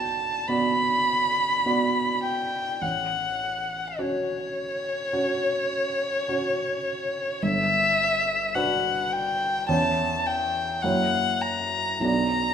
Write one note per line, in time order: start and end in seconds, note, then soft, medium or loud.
0.00 2.85 B1 soft
0.00 0.44 B3 soft
0.00 0.44 F#4 soft
0.00 0.44 D5 soft
0.00 0.49 A5 medium
0.48 1.63 B3 soft
0.48 1.63 F#4 soft
0.48 1.63 D5 soft
0.48 2.23 B5 medium
1.66 2.78 B3 soft
1.66 2.78 F#4 soft
1.66 2.79 D5 soft
2.24 2.83 G5 medium
2.82 3.95 A1 soft
2.82 4.01 F#5 soft
3.99 5.10 C#4 soft
3.99 5.10 F#4 soft
3.99 5.10 C#5 soft
3.99 7.44 C#5 medium
5.13 6.24 C#4 soft
5.13 6.24 F#4 soft
5.13 6.25 C#5 soft
6.28 7.38 C#4 soft
6.28 7.39 F#4 soft
6.28 7.39 C#5 soft
7.42 8.52 G1 soft
7.42 8.57 E5 medium
8.55 9.64 D4 soft
8.55 9.65 F#4 soft
8.55 9.65 B4 soft
8.55 9.14 F#5 medium
9.12 9.68 G5 medium
9.69 10.80 E2 soft
9.69 10.79 C#4 soft
9.69 10.79 E4 soft
9.69 10.80 C#5 soft
9.69 10.28 A5 medium
10.26 10.84 G5 medium
10.83 12.02 F#2 soft
10.83 12.02 A#3 soft
10.83 12.02 E4 soft
10.83 12.03 C#5 soft
10.83 11.43 F#5 medium
11.41 12.04 A#5 medium
12.00 12.54 B1 soft
12.00 12.54 B3 soft
12.00 12.54 D4 soft
12.04 12.54 D5 soft
12.04 12.54 A#5 medium